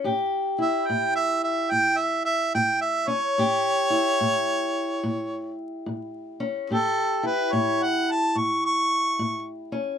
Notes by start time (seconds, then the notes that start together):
0.04 A2 G4
0.58 E4 E5
0.87 A2 G5
1.15 E5
1.44 E5
1.71 A2 G5
1.97 E5
2.25 E5
2.55 A2 G5
2.81 E5
3.08 C#4 C#5
3.38 A2 G4
3.90 E4
4.21 A2
5.03 A2
5.86 A2
6.40 C#4
6.70 A2 G4 A4
7.23 E4 B4
7.53 A2 C#5
7.83 F#5
8.11 A5
8.35 A2 C#6
8.66 C#6
9.19 A2
9.72 C#4